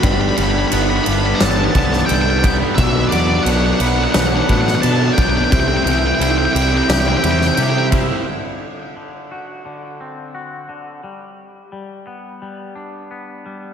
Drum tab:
RD |x-x-x-x-x-x-x-x-|x-x-x-x-x-x-x-x-|x-x-x-x-x-x-x-x-|----------------|
SD |--------o--o----|--------o--o----|--------o--o----|----------------|
BD |o---------o---o-|o---------o---o-|o-------------o-|----------------|

RD |----------------|
SD |----------------|
BD |----------------|